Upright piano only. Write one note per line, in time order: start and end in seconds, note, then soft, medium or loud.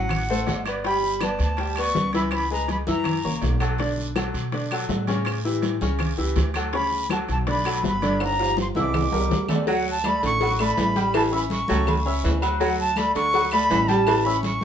0.00 0.22 F#3 medium
0.00 0.22 F#4 medium
0.00 0.23 F#5 medium
0.30 0.59 A3 medium
0.30 0.60 A4 medium
0.30 0.60 C5 medium
0.67 0.82 B3 medium
0.67 0.82 B4 medium
0.67 0.82 D5 medium
0.85 1.15 G3 medium
0.85 1.15 G4 medium
0.85 1.16 G5 medium
1.22 1.52 B3 medium
1.22 1.52 B4 medium
1.22 1.52 D5 medium
1.59 1.74 G3 medium
1.59 1.74 G4 medium
1.59 1.74 G5 medium
1.77 2.07 B3 medium
1.77 2.08 B4 medium
1.77 2.08 D5 medium
2.14 2.44 E3 medium
2.14 2.44 E4 medium
2.14 2.44 E5 medium
2.51 2.81 G#3 medium
2.51 2.81 G#4 medium
2.51 2.81 B4 medium
2.87 3.17 E3 medium
2.87 3.17 E4 medium
2.87 3.17 E5 medium
3.24 3.54 A#3 medium
3.24 3.54 A#4 medium
3.24 3.55 C#5 medium
3.60 3.75 F#3 medium
3.60 3.76 F#4 medium
3.60 3.76 A4 medium
3.79 4.09 D3 medium
3.79 4.10 D4 medium
3.79 4.10 D5 medium
4.16 4.46 F#3 medium
4.16 4.46 F#4 medium
4.16 4.46 A4 medium
4.53 4.68 D3 medium
4.53 4.68 D4 medium
4.53 4.68 D5 medium
4.72 5.02 F#3 medium
4.72 5.02 F#4 medium
4.72 5.02 A4 medium
5.08 5.38 C#3 medium
5.08 5.38 C#4 medium
5.08 5.39 C#5 medium
5.45 5.75 E3 medium
5.45 5.75 E4 medium
5.45 5.75 G4 medium
5.82 6.12 C#3 medium
5.82 6.12 C#4 medium
5.82 6.12 C#5 medium
6.18 6.48 E3 medium
6.18 6.48 E4 medium
6.18 6.48 G4 medium
6.55 6.70 F#3 medium
6.55 6.70 F#4 medium
6.55 6.71 A4 medium
6.73 7.03 C#3 medium
6.73 7.04 C#4 medium
6.73 7.04 C#5 medium
7.11 7.41 F#3 medium
7.11 7.41 F#4 medium
7.11 7.41 A4 medium
7.47 7.62 D3 medium
7.47 7.62 D4 medium
7.47 7.62 D5 medium
7.65 7.95 F#3 medium
7.65 7.96 F#4 medium
7.65 7.96 A4 medium
8.02 8.33 D3 loud
8.02 8.32 D4 medium
8.02 8.33 D5 medium
8.40 8.69 F3 medium
8.40 8.69 F4 medium
8.40 8.70 G4 medium
8.76 9.06 E3 medium
8.76 9.06 E4 medium
8.76 9.06 E5 medium
9.12 9.42 G3 medium
9.12 9.42 G4 medium
9.12 9.43 A#4 medium
9.49 9.64 A3 medium
9.49 9.65 A4 medium
9.49 9.65 D5 medium
9.68 9.98 F#3 medium
9.68 9.98 F#4 medium
9.68 9.98 F#5 medium
10.05 10.35 A3 medium
10.05 10.35 A4 medium
10.05 10.35 D5 medium
10.41 10.56 F#3 medium
10.41 10.56 F#4 medium
10.41 10.56 F#5 medium
10.59 10.89 A3 medium
10.59 10.89 A4 medium
10.59 10.90 D5 medium
10.96 11.26 G3 medium
10.96 11.26 G4 medium
10.96 11.26 G5 medium
11.32 11.62 C#4 medium
11.32 11.62 C#5 medium
11.32 11.63 E5 medium
11.69 11.99 A3 medium
11.69 11.99 A4 medium
11.69 12.00 G5 medium
12.06 12.36 C#4 medium
12.06 12.36 C#5 medium
12.06 12.36 E5 medium
12.42 12.57 F#3 medium
12.42 12.57 F#4 medium
12.42 12.58 F#5 medium
12.60 12.90 F#3 medium
12.60 12.91 F#4 medium
12.60 12.91 F#5 medium
12.97 13.27 A3 medium
12.97 13.27 A4 medium
12.97 13.28 D5 medium
13.34 13.49 F#3 medium
13.34 13.49 F#4 medium
13.34 13.49 F#5 medium
13.52 13.83 A3 medium
13.52 13.83 A4 medium
13.52 13.83 D5 medium
13.89 14.19 G3 medium
13.89 14.19 G4 loud
13.89 14.19 G5 medium
14.26 14.56 C#4 medium
14.26 14.56 C#5 medium
14.26 14.56 E5 medium